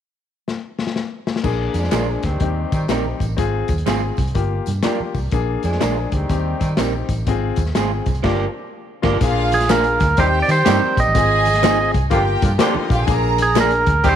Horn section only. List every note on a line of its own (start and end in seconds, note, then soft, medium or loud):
1.76 2.22 F3 medium
1.76 2.22 G#3 medium
1.76 2.22 D4 medium
1.76 2.22 G#4 medium
2.25 2.70 D#3 medium
2.25 2.70 G3 medium
2.25 2.70 C4 medium
2.25 2.70 G4 medium
2.71 2.86 D#3 medium
2.71 2.86 G3 medium
2.71 2.86 C4 medium
2.71 2.86 G4 medium
5.64 6.10 F3 medium
5.64 6.10 G#3 medium
5.64 6.10 D4 medium
5.64 6.10 G#4 medium
6.12 6.58 D#3 medium
6.12 6.57 G3 medium
6.12 6.57 C4 medium
6.12 6.57 G4 medium
6.58 6.74 D#3 medium
6.58 6.73 G3 medium
6.58 6.74 C4 medium
6.58 6.73 G4 medium
10.18 10.28 D#3 medium
10.18 10.28 G3 medium
10.18 10.28 C4 medium
10.18 10.28 G4 loud
10.48 10.56 D#3 medium
10.48 10.56 G3 medium
10.48 10.56 C4 medium
10.48 10.56 G4 medium
10.65 11.12 D#3 loud
10.65 11.12 G3 loud
10.65 11.12 C4 medium
10.65 11.12 G4 loud
12.10 12.21 D3 medium
12.10 12.20 F3 medium
12.10 12.21 A#3 medium
12.10 12.20 F4 loud
12.43 12.50 D3 medium
12.43 12.50 F3 medium
12.43 12.50 A#3 medium
12.43 12.50 F4 medium
12.59 13.05 D3 loud
12.59 13.06 F3 loud
12.59 13.06 A#3 loud
12.59 13.06 F4 loud
14.03 14.14 D#3 medium
14.03 14.14 G3 loud
14.03 14.14 C4 loud
14.03 14.14 G4 loud